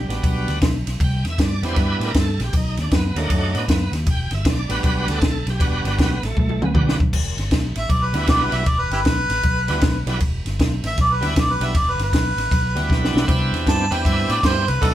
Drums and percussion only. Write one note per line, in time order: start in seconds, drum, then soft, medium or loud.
0.10 snare soft
0.10 ride medium
0.23 kick medium
0.23 ride medium
0.48 snare soft
0.48 ride medium
0.61 kick medium
0.61 snare loud
0.61 ride medium
0.87 snare soft
0.87 ride medium
1.00 kick medium
1.00 ride medium
1.25 snare soft
1.25 ride medium
1.38 kick medium
1.38 snare loud
1.38 ride medium
1.63 snare soft
1.63 ride medium
1.76 kick medium
1.76 snare soft
1.76 ride medium
2.01 snare soft
2.01 ride medium
2.14 kick medium
2.14 snare loud
2.14 ride medium
2.40 snare soft
2.40 ride medium
2.53 kick medium
2.53 ride medium
2.77 snare soft
2.77 ride medium
2.91 kick medium
2.91 snare loud
2.91 ride medium
3.16 snare soft
3.16 ride medium
3.30 kick medium
3.30 ride medium
3.55 snare soft
3.55 ride medium
3.68 kick medium
3.68 snare loud
3.68 ride medium
3.93 snare soft
3.93 ride medium
4.06 kick medium
4.06 ride medium
4.31 snare soft
4.31 ride medium
4.45 kick medium
4.45 snare loud
4.45 ride medium
4.70 snare soft
4.70 ride medium
4.83 kick medium
4.83 ride medium
5.08 snare soft
5.08 ride medium
5.22 kick medium
5.22 snare loud
5.22 ride medium
5.47 snare soft
5.47 ride medium
5.60 kick medium
5.60 ride medium
5.85 snare soft
5.85 ride medium
5.99 kick medium
5.99 snare loud
5.99 ride medium
6.23 snare soft
6.23 ride medium
6.37 kick medium
6.37 high tom medium
6.49 high tom medium
6.62 mid tom medium
6.74 kick medium
6.74 mid tom medium
6.89 snare loud
7.00 kick loud
7.13 kick medium
7.13 crash loud
7.38 snare soft
7.38 ride medium
7.51 kick medium
7.51 snare loud
7.51 ride medium
7.75 snare soft
7.75 ride medium
7.90 kick medium
7.90 ride medium
8.14 snare soft
8.14 ride medium
8.27 kick medium
8.27 snare loud
8.27 ride medium
8.52 snare soft
8.52 ride medium
8.66 kick medium
8.66 ride medium
8.91 snare soft
8.91 ride medium
9.05 kick medium
9.05 snare loud
9.05 ride medium
9.30 snare soft
9.30 ride medium
9.43 kick medium
9.43 ride medium
9.68 snare soft
9.68 ride medium
9.81 kick medium
9.81 snare loud
9.81 ride medium
10.07 snare soft
10.07 ride medium
10.20 kick medium
10.20 ride medium
10.46 snare soft
10.46 ride medium
10.59 kick medium
10.59 snare loud
10.59 ride medium
10.84 snare soft
10.84 ride medium
10.97 kick medium
10.97 snare soft
10.97 ride medium
11.22 snare soft
11.22 ride medium
11.36 kick medium
11.36 snare loud
11.36 ride medium
11.61 snare soft
11.61 ride medium
11.75 kick medium
11.75 snare soft
11.75 ride medium
11.99 snare soft
11.99 ride medium
12.13 kick medium
12.13 snare loud
12.13 ride medium
12.38 snare soft
12.38 ride medium
12.51 kick medium
12.51 snare soft
12.51 ride medium
12.76 snare soft
12.76 ride medium
12.90 kick medium
12.90 snare medium
13.05 snare medium
13.17 snare loud
13.28 kick medium
13.28 ride medium
13.54 snare soft
13.54 ride medium
13.67 kick medium
13.67 snare loud
13.67 ride medium
13.92 snare soft
13.92 ride medium
14.05 kick medium
14.05 ride medium
14.29 snare soft
14.29 ride medium
14.43 kick medium
14.43 snare loud
14.43 ride medium
14.68 snare soft
14.68 ride medium
14.82 kick medium
14.82 snare soft
14.82 ride medium